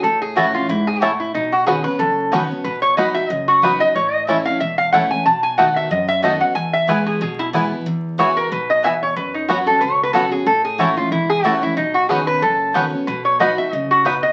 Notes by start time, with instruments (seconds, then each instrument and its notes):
0.03 upright bass A1, steel-string acoustic guitar A2, resonator guitar played with a steel bar A4
0.22 resonator guitar played with a steel bar G#4
0.36 steel-string acoustic guitar E3 A3 C#4 E4, mandolin A3 E4 C#5 A5, five-string banjo A3 C#4 E4, resonator guitar played with a steel bar F#4
0.53 steel-string acoustic guitar C#4 E4, resonator guitar played with a steel bar F4
0.69 upright bass E2, steel-string acoustic guitar G#2, resonator guitar played with a steel bar E4
0.87 resonator guitar played with a steel bar G#4
1.01 steel-string acoustic guitar A2, mandolin A3 E4 C#5 A5, five-string banjo A3 C#4 E4, resonator guitar played with a steel bar F#4
1.20 resonator guitar played with a steel bar E4
1.34 upright bass B1, steel-string acoustic guitar B2, resonator guitar played with a steel bar D#4
1.52 resonator guitar played with a steel bar F#4
1.66 steel-string acoustic guitar B2 D#3 B3 C#4, five-string banjo B3 C#4 F#4, mandolin D#4 B4 F#5 C#6, resonator guitar played with a steel bar G#4
1.84 steel-string acoustic guitar B3 C#4, resonator guitar played with a steel bar B4
1.99 upright bass F#1, steel-string acoustic guitar F#2, resonator guitar played with a steel bar A4
2.32 steel-string acoustic guitar B2 D#3 B3 C#4, five-string banjo B3 C#4 F#4, mandolin D#4 B4 F#5 C#6
2.50 steel-string acoustic guitar B3 C#4
2.64 upright bass B1, steel-string acoustic guitar B2, resonator guitar played with a steel bar B4
2.82 resonator guitar played with a steel bar C#5
2.97 steel-string acoustic guitar F#3 B3 D#4 F#4, five-string banjo B3 D#4 F#4, mandolin D#4 B4 F#5 B5, resonator guitar played with a steel bar D#5
3.14 steel-string acoustic guitar D#4 F#4, resonator guitar played with a steel bar E5
3.30 upright bass F#1, steel-string acoustic guitar F#2, resonator guitar played with a steel bar D#5
3.48 resonator guitar played with a steel bar F#4
3.62 steel-string acoustic guitar F#3 B3 D#4 F#4, five-string banjo B3 D#4 F#4, mandolin D#4 B4 F#5 B5, resonator guitar played with a steel bar B4
3.80 steel-string acoustic guitar D#4 F#4, resonator guitar played with a steel bar D#5
3.95 upright bass A1, steel-string acoustic guitar A2, resonator guitar played with a steel bar C#5
4.13 resonator guitar played with a steel bar D#5
4.27 steel-string acoustic guitar E3 A3 C#4 E4, mandolin A3 E4 C#5 A5, five-string banjo A3 C#4 E4, resonator guitar played with a steel bar E5
4.45 steel-string acoustic guitar C#4 E4, resonator guitar played with a steel bar F5
4.60 upright bass E1, steel-string acoustic guitar E2, resonator guitar played with a steel bar E5
4.78 resonator guitar played with a steel bar F5
4.92 steel-string acoustic guitar E3 A3 C#4 E4, mandolin A3 E4 C#5 A5, five-string banjo A3 C#4 E4, resonator guitar played with a steel bar F#5
5.11 steel-string acoustic guitar C#4 E4, resonator guitar played with a steel bar G#5
5.25 upright bass B1, steel-string acoustic guitar B2, resonator guitar played with a steel bar A5
5.43 resonator guitar played with a steel bar G#5
5.58 steel-string acoustic guitar D#3 A3 B3 F#4, five-string banjo A3 D#4 F#4, mandolin B3 F#4 D#5 A5, resonator guitar played with a steel bar F#5
5.76 resonator guitar played with a steel bar E5
5.90 upright bass F#2, steel-string acoustic guitar F#2, resonator guitar played with a steel bar D#5
6.08 resonator guitar played with a steel bar E5
6.22 steel-string acoustic guitar D#3 A3 B3 F#4, five-string banjo A3 D#4 F#4, mandolin B3 F#4 D#5 A5, resonator guitar played with a steel bar D#5
6.40 steel-string acoustic guitar B3 F#4, resonator guitar played with a steel bar F#5
6.55 steel-string acoustic guitar E2, upright bass E2, resonator guitar played with a steel bar G#5
6.73 resonator guitar played with a steel bar E5
6.87 steel-string acoustic guitar E3 G#3 B3 E4, mandolin B3 E4 B4 G#5, five-string banjo B3 E4, resonator guitar played with a steel bar B4
7.06 resonator guitar played with a steel bar G#4
7.21 upright bass B1, steel-string acoustic guitar B2, resonator guitar played with a steel bar G#4
7.39 resonator guitar played with a steel bar E4
7.53 steel-string acoustic guitar E3 G#3 B3 E4, mandolin B3 E4 B4 G#5, five-string banjo B3 E4
7.71 steel-string acoustic guitar B3 E4
7.86 upright bass E2, steel-string acoustic guitar E2
8.18 steel-string acoustic guitar E3 G#3 B3 F#4, mandolin B3 F#4 E5 G#5, five-string banjo B3 E4, resonator guitar played with a steel bar C#5
8.37 resonator guitar played with a steel bar A#4
8.51 upright bass B1, steel-string acoustic guitar B2, resonator guitar played with a steel bar B4
8.70 resonator guitar played with a steel bar D#5
8.83 steel-string acoustic guitar E2, mandolin B3 F#4 E5 G#5, five-string banjo B3 E4, resonator guitar played with a steel bar E5
9.03 resonator guitar played with a steel bar C#5
9.16 upright bass F#2, steel-string acoustic guitar F#2, resonator guitar played with a steel bar B4
9.34 resonator guitar played with a steel bar D#4
9.48 steel-string acoustic guitar F#3 B3 C#4 F#4, mandolin B3 F#4 C#5 F#5, five-string banjo B3 C#4 F#4, resonator guitar played with a steel bar F#4
9.66 steel-string acoustic guitar C#4 F#4, resonator guitar played with a steel bar A4
9.81 upright bass C#2, steel-string acoustic guitar B2, resonator guitar played with a steel bar B4
9.92 resonator guitar played with a steel bar C#5
10.03 resonator guitar played with a steel bar B4
10.13 steel-string acoustic guitar F#3 B3 C#4 F#4, mandolin B3 F#4 C#5 F#5, five-string banjo B3 C#4 F#4, resonator guitar played with a steel bar A4
10.31 steel-string acoustic guitar C#4 F#4, resonator guitar played with a steel bar G#4
10.46 upright bass A1, steel-string acoustic guitar A2, resonator guitar played with a steel bar A4
10.64 resonator guitar played with a steel bar G#4
10.78 steel-string acoustic guitar E3 A3 C#4 E4, mandolin A3 E4 C#5 A5, five-string banjo A3 C#4 E4, resonator guitar played with a steel bar F#4
10.97 steel-string acoustic guitar C#4 E4, resonator guitar played with a steel bar F4
11.11 upright bass E1, steel-string acoustic guitar E2, resonator guitar played with a steel bar E4
11.29 resonator guitar played with a steel bar G#4
11.44 steel-string acoustic guitar E3 A3 C#4 E4, mandolin A3 E4 C#5 A5, five-string banjo A3 C#4 E4, resonator guitar played with a steel bar F#4
11.62 steel-string acoustic guitar C#4 E4, resonator guitar played with a steel bar E4
11.76 upright bass B1, steel-string acoustic guitar B2, resonator guitar played with a steel bar D#4
11.94 resonator guitar played with a steel bar F#4
12.09 steel-string acoustic guitar B2 D#3 B3 C#4, five-string banjo B3 C#4 F#4, mandolin D#4 B4 F#5 C#6, resonator guitar played with a steel bar G#4
12.27 resonator guitar played with a steel bar B4
12.42 upright bass F#1, steel-string acoustic guitar F#2, resonator guitar played with a steel bar A4
12.74 steel-string acoustic guitar B2 D#3 B3 C#4, five-string banjo B3 C#4 F#4, mandolin D#4 B4 F#5 C#6
12.92 steel-string acoustic guitar B3 C#4
13.07 upright bass B1, steel-string acoustic guitar B2, resonator guitar played with a steel bar B4
13.25 resonator guitar played with a steel bar C#5
13.40 steel-string acoustic guitar F#3 B3 D#4 F#4, five-string banjo B3 D#4 F#4, mandolin D#4 B4 F#5 B5, resonator guitar played with a steel bar D#5
13.57 steel-string acoustic guitar D#4 F#4, resonator guitar played with a steel bar E5
13.72 upright bass F#1, steel-string acoustic guitar C#3, resonator guitar played with a steel bar D#5
13.91 resonator guitar played with a steel bar F#4
14.05 steel-string acoustic guitar B2, five-string banjo B3 D#4 F#4, mandolin D#4 B4 F#5 B5, resonator guitar played with a steel bar B4
14.23 resonator guitar played with a steel bar D#5